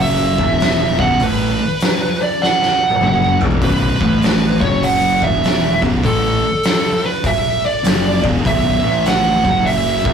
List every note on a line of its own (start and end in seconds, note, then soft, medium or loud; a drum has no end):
0.00 0.35 F#1 loud
0.00 0.38 F#2 loud
0.00 0.38 C#3 loud
0.00 0.38 F#3 medium
0.00 0.99 E5 loud
0.38 0.95 E1 medium
0.38 0.98 E2 medium
0.38 0.98 B2 loud
0.38 0.99 E3 loud
0.38 kick loud
0.60 snare loud
0.60 open hi-hat medium
0.99 1.19 B0 medium
0.99 1.20 B1 medium
0.99 1.20 F#2 loud
0.99 1.20 B2 loud
0.99 1.21 F#5 loud
0.99 kick loud
1.20 1.57 A1 medium
1.20 1.58 A2 loud
1.20 1.59 E3 loud
1.20 1.59 A3 loud
1.20 2.22 B4 medium
1.20 kick loud
1.20 open hi-hat medium
1.80 snare loud
1.80 open hi-hat medium
2.22 2.41 D5 medium
2.42 3.37 F#5 medium
2.42 snare medium
2.62 snare medium
2.90 high tom medium
3.01 3.39 F#1 medium
3.01 3.39 F#2 medium
3.01 3.40 C#3 medium
3.01 3.40 F#3 medium
3.01 mid tom medium
3.40 3.61 E1 medium
3.40 3.61 E2 medium
3.40 3.61 B2 medium
3.40 3.61 E3 loud
3.40 floor tom loud
3.51 floor tom medium
3.61 3.99 B0 loud
3.61 4.00 B1 medium
3.61 4.00 F#2 medium
3.61 4.00 B2 loud
3.61 4.61 B4 medium
3.61 kick loud
3.61 open hi-hat medium
4.00 4.58 A1 medium
4.00 4.60 A2 medium
4.00 4.60 E3 loud
4.00 4.61 A3 medium
4.00 kick loud
4.22 snare loud
4.22 open hi-hat medium
4.60 5.18 F#1 medium
4.60 5.20 F#2 loud
4.60 5.21 C#3 medium
4.60 5.21 F#3 loud
4.60 4.83 C#5 medium
4.60 kick loud
4.83 5.23 F#5 loud
4.83 open hi-hat medium
5.21 5.79 E1 loud
5.21 5.81 E2 medium
5.21 5.81 B2 medium
5.21 5.81 E3 medium
5.21 5.79 E5 medium
5.21 kick loud
5.44 snare loud
5.44 open hi-hat medium
5.82 6.02 B0 medium
5.82 6.03 B1 medium
5.82 6.03 F#2 loud
5.82 6.03 B2 medium
5.82 kick loud
6.03 6.40 A1 loud
6.03 6.42 A2 loud
6.03 6.42 E3 loud
6.03 6.42 A3 loud
6.03 7.05 A4 medium
6.03 kick loud
6.03 open hi-hat medium
6.63 snare loud
6.63 open hi-hat medium
7.05 7.26 B4 medium
7.24 7.65 E5 loud
7.24 kick loud
7.24 open hi-hat medium
7.66 8.21 D5 medium
7.83 8.22 F#1 medium
7.83 8.22 F#2 medium
7.83 8.22 C#3 medium
7.83 8.23 F#3 medium
7.83 snare loud
7.83 open hi-hat medium
8.23 8.44 E1 medium
8.23 8.43 E2 medium
8.23 8.44 B2 medium
8.23 8.44 E3 loud
8.23 kick loud
8.44 8.81 B0 loud
8.44 8.84 B1 loud
8.44 8.84 F#2 loud
8.44 8.84 B2 loud
8.44 9.02 E5 loud
8.44 kick loud
8.44 open hi-hat medium
8.83 9.40 A1 loud
8.83 9.43 A2 medium
8.83 9.43 E3 medium
8.83 9.44 A3 medium
9.06 9.68 F#5 loud
9.06 snare loud
9.06 open hi-hat medium
9.44 10.01 F#1 medium
9.44 10.05 F#2 medium
9.44 10.05 C#3 loud
9.44 10.05 F#3 loud
9.44 kick loud
9.66 10.13 E5 loud
9.66 open hi-hat medium
10.05 10.13 E1 loud
10.05 10.13 E2 medium
10.05 10.13 B2 medium
10.05 10.13 E3 loud
10.05 kick loud